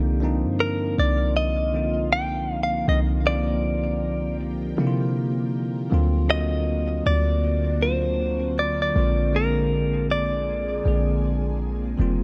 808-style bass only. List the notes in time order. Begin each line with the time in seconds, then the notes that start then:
Already playing: C2
0.45 G2
0.98 C2
2.88 C2
4.78 C3
5.92 D2
7.06 D2
8.96 A#1
10.86 A#1
11.99 F1